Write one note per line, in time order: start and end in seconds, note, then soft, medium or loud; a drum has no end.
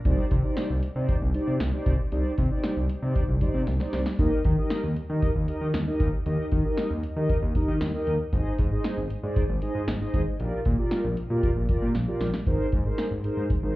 0.05 0.17 C2 loud
0.05 0.25 D#4 medium
0.05 0.25 G4 medium
0.05 0.25 C5 medium
0.05 0.25 D5 medium
0.05 kick loud
0.05 closed hi-hat medium
0.31 0.43 C3 loud
0.31 kick loud
0.31 closed hi-hat medium
0.44 0.71 D#4 medium
0.44 0.71 G4 medium
0.44 0.71 C5 medium
0.44 0.71 D5 medium
0.57 snare loud
0.57 closed hi-hat medium
0.70 0.81 C2 loud
0.83 closed hi-hat medium
0.96 1.07 C3 loud
0.96 1.16 D#4 medium
0.96 1.16 G4 medium
0.96 1.16 C5 medium
0.96 1.16 D5 loud
1.09 kick loud
1.09 closed hi-hat medium
1.22 1.33 C2 loud
1.34 1.54 D#4 medium
1.34 1.54 G4 medium
1.34 1.54 C5 medium
1.34 1.54 D5 loud
1.34 closed hi-hat medium
1.47 1.59 C3 medium
1.60 1.72 C2 loud
1.60 snare loud
1.60 closed hi-hat medium
1.73 1.93 D#4 medium
1.73 1.93 G4 medium
1.73 1.93 C5 medium
1.73 1.93 D5 loud
1.86 1.98 C2 medium
1.86 kick loud
1.86 closed hi-hat medium
2.12 2.23 C2 loud
2.12 2.32 D#4 medium
2.12 2.32 G4 medium
2.12 2.32 C5 medium
2.12 2.32 D5 medium
2.12 closed hi-hat medium
2.38 2.49 C3 loud
2.38 kick loud
2.38 closed hi-hat medium
2.51 2.78 D#4 medium
2.51 2.78 G4 medium
2.51 2.78 C5 medium
2.51 2.78 D5 medium
2.64 snare loud
2.64 closed hi-hat medium
2.77 2.88 C2 loud
2.89 closed hi-hat medium
3.02 3.14 C3 loud
3.02 3.23 D#4 medium
3.02 3.23 G4 medium
3.02 3.23 C5 medium
3.02 3.23 D5 medium
3.15 kick loud
3.15 closed hi-hat medium
3.28 3.40 C2 medium
3.41 3.61 D#4 medium
3.41 3.61 G4 medium
3.41 3.61 C5 medium
3.41 3.61 D5 medium
3.41 kick medium
3.41 closed hi-hat medium
3.54 3.66 C3 medium
3.67 3.79 C2 medium
3.67 snare medium
3.67 closed hi-hat medium
3.80 4.00 D#4 medium
3.80 4.00 G4 medium
3.80 4.00 C5 medium
3.80 4.00 D5 loud
3.80 snare medium
3.93 4.05 C2 medium
3.93 snare medium
3.93 open hi-hat medium
4.06 snare medium
4.19 4.30 D#2 loud
4.19 4.39 D#4 medium
4.19 4.39 G4 medium
4.19 4.39 A#4 medium
4.19 4.39 D#5 loud
4.19 kick loud
4.19 closed hi-hat medium
4.44 4.56 D#3 loud
4.44 kick loud
4.44 closed hi-hat medium
4.58 4.84 D#4 medium
4.58 4.84 G4 medium
4.58 4.84 A#4 medium
4.58 4.84 D#5 loud
4.70 snare loud
4.70 closed hi-hat medium
4.84 4.95 D#2 loud
4.96 closed hi-hat medium
5.10 5.21 D#3 medium
5.10 5.29 D#4 medium
5.10 5.29 G4 medium
5.10 5.29 A#4 medium
5.10 5.29 D#5 medium
5.22 kick loud
5.22 closed hi-hat medium
5.35 5.47 D#2 loud
5.48 5.68 D#4 medium
5.48 5.68 G4 medium
5.48 5.68 A#4 medium
5.48 5.68 D#5 loud
5.48 closed hi-hat medium
5.61 5.73 D#3 medium
5.74 5.86 D#2 loud
5.74 snare loud
5.74 closed hi-hat medium
5.87 6.07 D#4 medium
5.87 6.07 G4 medium
5.87 6.07 A#4 medium
5.87 6.07 D#5 loud
6.00 6.11 D#2 loud
6.00 kick loud
6.00 closed hi-hat medium
6.26 6.37 D#2 loud
6.26 6.46 D#4 medium
6.26 6.46 G4 medium
6.26 6.46 A#4 medium
6.26 6.46 D#5 loud
6.26 closed hi-hat medium
6.52 6.63 D#3 loud
6.52 kick loud
6.52 closed hi-hat medium
6.65 6.91 D#4 medium
6.65 6.91 G4 medium
6.65 6.91 A#4 medium
6.65 6.91 D#5 loud
6.78 snare loud
6.78 closed hi-hat medium
6.91 7.02 D#2 loud
7.03 closed hi-hat medium
7.16 7.28 D#3 medium
7.16 7.36 D#4 medium
7.16 7.36 G4 medium
7.16 7.36 A#4 medium
7.16 7.36 D#5 loud
7.29 kick loud
7.29 closed hi-hat medium
7.42 7.54 D#2 loud
7.55 7.75 D#4 medium
7.55 7.75 G4 medium
7.55 7.75 A#4 medium
7.55 7.75 D#5 loud
7.55 kick medium
7.55 closed hi-hat medium
7.68 7.80 D#3 loud
7.81 7.93 D#2 loud
7.81 snare loud
7.81 closed hi-hat medium
7.94 8.14 D#4 medium
7.94 8.14 G4 medium
7.94 8.14 A#4 medium
7.94 8.14 D#5 loud
8.07 8.18 D#2 medium
8.07 closed hi-hat medium
8.33 8.44 G#1 loud
8.33 8.53 D#4 medium
8.33 8.53 G#4 medium
8.33 8.53 C5 medium
8.33 8.53 D#5 medium
8.33 kick loud
8.33 closed hi-hat medium
8.58 8.70 G#2 loud
8.58 kick loud
8.58 closed hi-hat medium
8.72 8.98 D#4 medium
8.72 8.98 G#4 medium
8.72 8.98 C5 medium
8.72 8.98 D#5 medium
8.84 snare loud
8.84 closed hi-hat medium
8.97 9.09 G#1 loud
9.10 closed hi-hat medium
9.23 9.35 G#2 loud
9.23 9.43 D#4 medium
9.23 9.43 G#4 medium
9.23 9.43 C5 medium
9.23 9.43 D5 loud
9.36 kick loud
9.36 closed hi-hat medium
9.49 9.61 G#1 loud
9.62 9.82 D#4 medium
9.62 9.82 G#4 medium
9.62 9.82 C5 medium
9.62 9.82 D#5 loud
9.62 closed hi-hat medium
9.75 9.86 G#2 medium
9.88 9.99 G#1 loud
9.88 snare loud
9.88 closed hi-hat medium
10.01 10.21 D#4 medium
10.01 10.21 G#4 medium
10.01 10.21 C5 medium
10.01 10.21 D#5 loud
10.14 10.25 G#1 loud
10.14 kick loud
10.14 closed hi-hat medium
10.40 10.51 A#1 loud
10.40 10.60 F4 medium
10.40 10.60 G4 medium
10.40 10.60 A#4 medium
10.40 10.60 D5 medium
10.40 closed hi-hat medium
10.65 10.77 A#2 medium
10.65 kick loud
10.65 closed hi-hat medium
10.78 11.05 F4 medium
10.78 11.05 G4 medium
10.78 11.05 A#4 medium
10.78 11.05 D5 loud
10.91 snare loud
10.91 closed hi-hat medium
11.04 11.16 A#1 loud
11.17 closed hi-hat medium
11.30 11.42 A#2 medium
11.30 11.50 F4 medium
11.30 11.50 G4 medium
11.30 11.50 A#4 medium
11.30 11.50 D5 loud
11.43 kick loud
11.43 closed hi-hat medium
11.56 11.67 A#1 loud
11.69 11.89 F4 medium
11.69 11.89 G4 medium
11.69 11.89 A#4 medium
11.69 11.89 D5 loud
11.69 kick medium
11.69 closed hi-hat medium
11.82 11.93 A#2 loud
11.95 12.06 A#1 medium
11.95 snare medium
11.95 closed hi-hat medium
12.08 12.28 F4 medium
12.08 12.28 G4 medium
12.08 12.28 A#4 medium
12.08 12.28 D5 loud
12.21 12.32 A#1 medium
12.21 snare medium
12.21 open hi-hat medium
12.34 snare medium
12.47 12.58 G#1 loud
12.47 12.67 D#4 medium
12.47 12.67 G#4 medium
12.47 12.67 A#4 medium
12.47 12.67 C5 medium
12.47 kick loud
12.47 closed hi-hat medium
12.72 12.84 G#2 medium
12.72 kick loud
12.72 closed hi-hat medium
12.85 13.05 D#4 medium
12.85 13.05 G#4 medium
12.85 13.05 A#4 medium
12.85 13.05 C5 medium
12.98 snare loud
12.98 closed hi-hat medium
13.11 13.23 G#1 loud
13.24 13.44 D#4 medium
13.24 13.44 G#4 medium
13.24 13.44 A#4 medium
13.24 13.44 C5 medium
13.24 closed hi-hat medium
13.37 13.48 G#2 medium
13.50 kick medium
13.50 closed hi-hat medium
13.63 13.74 G#1 medium
13.63 13.76 D#4 medium
13.63 13.76 G#4 medium
13.63 13.76 A#4 medium
13.63 13.76 C5 medium